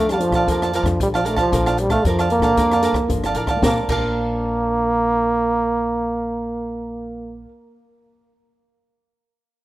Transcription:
Already playing: F2 F3 A3 D4 A4 C5
0.09 G3 A5, cross-stick, closed hi-hat
0.13 D5 F5
0.20 F3 D4 A4 C5, closed hi-hat
0.30 A#2, kick, cross-stick
0.35 D5 F5 A5
0.47 F2 A#3 D4 A4 A#4 C5, kick, closed hi-hat
0.51 D5 F5 A5
0.62 D5 F5 A5, cross-stick, closed hi-hat
0.73 F3 A#4 D5 F5 A5, closed hi-hat
0.83 F2 D4 A4 C5, muted cavaquinho stroke, kick, cross-stick, closed hi-hat
1.00 A#1 F3 G3, kick, closed hi-hat
1.14 F3 D5 F5 A5, cross-stick
1.25 A3 D4 A4 A#4 C5 D5 F5 A5, closed hi-hat
1.36 F3 D5 F5 A5, kick, cross-stick
1.52 A#1 A#3 D4 A4 A#4 C5 D5 F5 A5, kick, closed hi-hat
1.66 D5 F5 A5, cross-stick, closed hi-hat
1.77 G3, muted cavaquinho stroke, closed hi-hat
1.90 A3 D4 A4 C5 D5 F5 A5, kick, cross-stick, closed hi-hat
2.05 F2 F3 D4 A4 A#4 C5 D5 F5 A5, kick, closed hi-hat
2.19 D5 F5 A5, cross-stick, closed hi-hat
2.30 A#3, closed hi-hat
2.39 A#2 D4 A4 C5 A5, kick, cross-stick
2.44 D5 F5
2.57 F2 A#3 D4 A4 A#4 C5 D5 F5 A5, kick, closed hi-hat
2.71 D5 F5 A5, cross-stick, closed hi-hat
2.82 D4 A4 A#4 C5 D5 F5 A5, closed hi-hat
2.92 F2, muted cavaquinho stroke, kick, cross-stick
3.08 G1 F3 D4 A4 C5, kick, closed hi-hat
3.24 F5 A5, cross-stick, closed hi-hat
3.28 D5
3.34 A1 A#4 D5 F5 A5, closed hi-hat
3.47 D5 F5 A5, kick, cross-stick
3.56 A#3
3.62 A#1 A#3 D4 A#4 D5 F5, kick, snare
3.67 A5
3.72 C5
3.83 A#3
3.89 A#1 A#3 D4 A#4 D5 F5 A5, kick, crash
3.98 C5

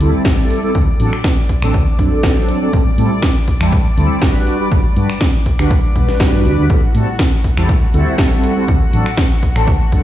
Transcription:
Already playing: D5 D6
0.00 D2 G3 C4 E4 A4, open hi-hat
0.14 muted fingered electric bass stroke
0.25 G1 G3 E4, kick, snare
0.50 open hi-hat
0.63 G3 C4 E4 A4
0.75 D2 F#3 C4 D4 A4, kick
0.99 A1 F#3 C4 D4 A4, open hi-hat
1.13 finger snap
1.24 kick, snare
1.49 muted fingered electric bass stroke, kick, open hi-hat
1.62 A1 F#3 C4 D4 A4, finger snap
1.74 D2, kick
1.99 F#2 F#3 C4 D4 A4, kick, open hi-hat
2.12 muted fingered electric bass stroke
2.23 C2 F#3 C4 D4 A4, kick, snare
2.49 open hi-hat
2.61 F#3 C4 D4 A4
2.73 A1 G3 C4 E4 A4, kick
2.98 A2 G3 C4 E4 A4, open hi-hat
3.22 kick, snare
3.48 muted fingered electric bass stroke, kick, open hi-hat
3.60 E2 G3 C4 E4 A4, finger snap
3.72 A1, kick
3.97 D2 G3 C4 E4 A4, open hi-hat
4.10 muted fingered electric bass stroke
4.22 G1 G3 D4 F#4 B4, kick, snare
4.47 open hi-hat
4.59 G3 D4 F#4 B4
4.71 G1 G3 D4 F#4 B4, kick
4.96 G2 G3 D4 F#4 B4, open hi-hat
5.10 finger snap
5.21 kick, snare
5.46 muted fingered electric bass stroke, kick, open hi-hat
5.59 D2 G3 D4 F#4 B4, finger snap
5.71 G1, kick
5.95 B1 G3 D4 F#4 B4, kick, open hi-hat
6.08 snare
6.20 G2 G3 D4 F#4 B4, kick, snare
6.45 D2, open hi-hat
6.58 D2 G3 D4 F#4 B4
6.70 A1 G3 C4 E4 F#4 A4 F#5, kick
6.94 A2 G3 C4 E4 A4, open hi-hat
7.19 kick, snare
7.44 muted fingered electric bass stroke, kick, open hi-hat
7.57 E2 G3 C4 E4 A4, finger snap
7.69 A1, kick
7.93 D2 G3 C4 E4 A4, open hi-hat
8.07 muted fingered electric bass stroke
8.18 G1 G3 C4 E4 A4, kick, snare
8.44 open hi-hat
8.56 G3 C4 E4 A4
8.68 D2 F#3 C4 A4, kick
8.93 A1 F#3 C4 D4 A4, open hi-hat
9.06 finger snap
9.17 kick, snare
9.43 muted fingered electric bass stroke, kick, open hi-hat
9.55 A1 F#3 C4 D4 A4, finger snap
9.67 D2, kick
9.92 F#2 F#3 C4 D4 A4, kick, open hi-hat

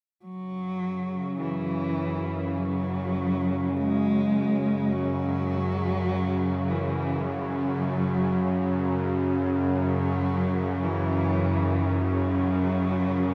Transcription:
0.25 F#2 C#3 F#3
1.41 E3
2.57 F#3
3.77 G#3
4.93 F#3
6.70 E3
7.30 F#3
9.66 F#3
10.83 E3
12.02 F#3

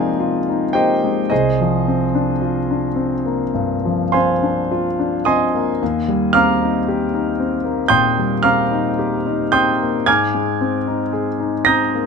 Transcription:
Already playing: C3 F3 G#3 A#3 D#4 F4 G#4 A#4 C5 D5 D#5 F5 G5 G#5 A#5 C6
0.20 F4
0.49 D#4
0.73 A#3 G4 C5 D#5 G5
1.04 G#3
1.30 C2 G#4 C5 D#5
1.61 F3
1.87 C4
2.15 D4
2.42 F4
2.71 D4
2.96 C4
3.26 A#3
3.54 G2
3.85 F3
4.12 C4 C5 F5 G#5 C6
4.43 D4
4.71 F4
4.99 D4
5.25 C4 D#5 G#5 C6 D#6
5.55 A#3
5.82 D#2
6.08 G3
6.33 C4 F5 A#5 D6 F6
6.62 D#4
6.88 G4
7.14 D#4
7.40 C4
7.64 A#3
7.88 A#2 G5 C6 D#6 G6
8.18 G3
8.43 C4 F5 A#5 D6 F6
8.71 D#4
8.99 G4
9.26 D#4
9.52 C4 G5 C6 D#6 G6
9.82 A#3
10.06 G#2 G#5 D6 F6 G#6
10.34 G#3
10.61 C4
10.87 D#4
11.13 G#4
11.40 D#4
11.65 C4 A#5 D#6 G6 A#6
11.95 A#3

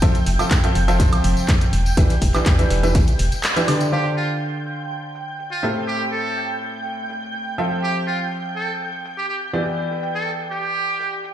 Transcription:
Already playing: G5 G6
0.02 F2 F3 C4 F4 A4 E5, kick, closed hi-hat, tambourine
0.15 closed hi-hat, tambourine
0.26 F1, closed hi-hat, open hi-hat
0.39 F3 C4 F4 A4 E5, closed hi-hat, tambourine, high woodblock
0.51 F2, kick, snare, clap, closed hi-hat, tambourine
0.64 F3 C4 F4 A4 E5, closed hi-hat, tambourine
0.75 F1, closed hi-hat, open hi-hat
0.88 F3 C4 F4 A4 E5, closed hi-hat, tambourine
1.00 F2, kick, clap, closed hi-hat, tambourine
1.12 closed hi-hat, tambourine, high woodblock
1.24 F1, closed hi-hat, open hi-hat
1.37 tambourine
1.48 F2, kick, snare, clap, closed hi-hat, tambourine
1.61 closed hi-hat, tambourine
1.73 E1, closed hi-hat, open hi-hat
1.86 closed hi-hat, tambourine
1.97 E2 E3 D4 G4 B4 E5, kick, closed hi-hat, tambourine
2.09 snare, closed hi-hat, tambourine
2.21 E1, kick, closed hi-hat, open hi-hat
2.34 E3 D4 G4 B4 E5, clap, closed hi-hat, tambourine, high woodblock
2.46 E2, kick, snare, clap, closed hi-hat, tambourine
2.59 E3 D4 G4 B4 E5, closed hi-hat, tambourine
2.70 E1, snare, closed hi-hat, open hi-hat
2.83 E3 D4 G4 B4 E5, closed hi-hat, tambourine
2.95 E2, kick, snare, closed hi-hat, tambourine
3.07 closed hi-hat, tambourine
3.19 E1, snare, closed hi-hat, open hi-hat
3.32 closed hi-hat, tambourine
3.43 snare, clap, closed hi-hat, tambourine
3.56 E3 D4 G4 B4 E5, closed hi-hat, tambourine
3.68 D3 D4 G4 B4 D5, closed hi-hat, open hi-hat, high woodblock
3.80 closed hi-hat, tambourine
3.92 D3 D4 G4 A4 C5 F5 G5 G6
4.17 F4
4.30 shaker
4.41 closed hi-hat, shaker
4.66 closed hi-hat, shaker
4.79 shaker
4.90 closed hi-hat, shaker
5.15 closed hi-hat, shaker
5.28 shaker
5.39 closed hi-hat, shaker
5.51 F4
5.63 A2 C4 G4 A4 E5
5.76 shaker
5.88 G4, closed hi-hat, shaker
6.00 snare
6.12 A4, closed hi-hat, shaker
6.25 shaker
6.37 closed hi-hat
6.60 closed hi-hat, shaker
6.74 shaker
6.85 closed hi-hat, shaker
7.10 snare, closed hi-hat, shaker
7.22 closed hi-hat, shaker
7.33 closed hi-hat, shaker
7.58 F3 C4 F4 A4 E5, shaker
7.72 shaker
7.83 G4, closed hi-hat, shaker
8.07 F4, closed hi-hat, shaker
8.20 shaker
8.31 closed hi-hat, shaker
8.45 closed hi-hat
8.56 A4, closed hi-hat, shaker
8.69 shaker
8.81 closed hi-hat, shaker
9.04 closed hi-hat, shaker
9.17 G4, shaker
9.29 G4, closed hi-hat, shaker
9.53 E3 B3 E4 G4 D5, closed hi-hat, shaker
9.66 closed hi-hat, shaker
9.78 closed hi-hat, shaker
9.90 snare
10.03 closed hi-hat, shaker
10.15 A4, shaker
10.26 closed hi-hat, shaker
10.51 G4, closed hi-hat, shaker
10.64 shaker
10.76 closed hi-hat, shaker
10.99 snare, closed hi-hat, shaker
11.12 closed hi-hat, shaker
11.24 closed hi-hat, shaker

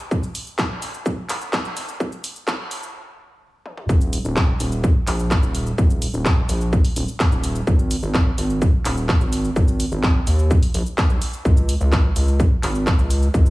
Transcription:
0.11 kick, shaker
0.23 shaker
0.35 open hi-hat, shaker
0.47 shaker
0.59 kick, clap, shaker
0.82 open hi-hat, shaker
0.94 shaker
1.06 kick, shaker
1.29 clap, open hi-hat, shaker
1.41 shaker
1.53 kick, clap, shaker
1.65 shaker
1.77 open hi-hat, shaker
1.89 shaker
2.00 kick, shaker
2.12 shaker
2.24 open hi-hat, shaker
2.36 shaker
2.48 kick, clap, shaker
2.71 open hi-hat, shaker
2.83 shaker
3.66 high tom
3.77 mid tom
3.89 D#1, kick, shaker
4.01 shaker
4.13 open hi-hat, shaker
4.25 D#1, shaker
4.36 kick, clap, shaker
4.60 D#1, open hi-hat, shaker
4.72 shaker
4.84 kick, shaker
5.07 A#1, clap, open hi-hat, shaker
5.19 shaker
5.31 kick, clap, shaker
5.43 D#1, shaker
5.55 open hi-hat, shaker
5.67 shaker
5.78 D#1, kick, shaker
5.90 shaker
6.02 open hi-hat, shaker
6.14 D#1, shaker
6.25 kick, clap, shaker
6.49 A#1, open hi-hat, shaker
6.61 shaker
6.73 kick, shaker
6.85 open hi-hat, shaker
6.96 D#1, open hi-hat, shaker
7.08 shaker
7.20 kick, clap, shaker
7.32 D#1, shaker
7.44 open hi-hat, shaker
7.55 shaker
7.67 G#1, kick, shaker
7.79 shaker
7.91 open hi-hat, shaker
8.03 G#1, shaker
8.14 kick, clap, shaker
8.38 G#1, open hi-hat, shaker
8.50 shaker
8.62 kick, shaker
8.85 D#1, clap, open hi-hat, shaker
8.97 shaker
9.09 kick, clap, shaker
9.21 G#1, shaker
9.33 open hi-hat, shaker
9.44 shaker
9.56 G#1, kick, shaker
9.68 shaker
9.80 open hi-hat, shaker
9.92 G#1, shaker
10.03 kick, clap, shaker
10.27 D#2, open hi-hat, shaker
10.39 shaker
10.51 kick, shaker
10.63 open hi-hat, shaker
10.74 A#1, open hi-hat, shaker
10.86 shaker
10.98 kick, clap, shaker
11.10 B1, shaker
11.22 open hi-hat, shaker
11.33 shaker
11.45 C#2, kick, shaker
11.57 shaker
11.69 open hi-hat, shaker
11.81 C#2, shaker
11.92 kick, clap, shaker
12.16 C#2, open hi-hat, shaker
12.28 shaker
12.40 kick, shaker
12.63 G#1, clap, open hi-hat, shaker
12.75 shaker
12.87 kick, clap, shaker
12.99 C#2, shaker
13.10 open hi-hat, shaker
13.22 shaker
13.34 C#2, kick, shaker
13.46 shaker

